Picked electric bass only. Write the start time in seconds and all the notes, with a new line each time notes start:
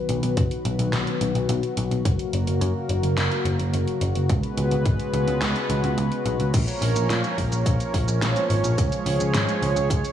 0.09 B1
0.23 B1
0.37 F#1
0.65 B1
0.79 B1
0.93 B1
1.21 B1
1.35 B1
1.49 B1
1.77 B1
1.91 B1
2.05 F#1
2.33 F#1
2.47 F#1
2.61 F#2
2.89 F#1
3.03 F#1
3.17 F#1
3.45 F#1
3.59 F#1
3.73 F#1
4.01 F#1
4.15 F#1
4.30 C#2
4.57 C#2
4.72 C#2
4.86 G#1
5.13 C#2
5.28 C#2
5.42 C#2
5.70 C#2
5.84 C#2
5.98 C#2
6.26 B1
6.40 C#2
6.54 A#1
6.82 A#1
6.96 A#1
7.10 A#2
7.38 A#1
7.52 A#1
7.66 A#1
7.94 A#1
8.08 A#1
8.22 A#1
8.50 G#1
8.64 A#1
8.78 C#2
9.06 C#2
9.20 C#2
9.34 G#1
9.62 C#2
9.76 C#2
9.90 C#2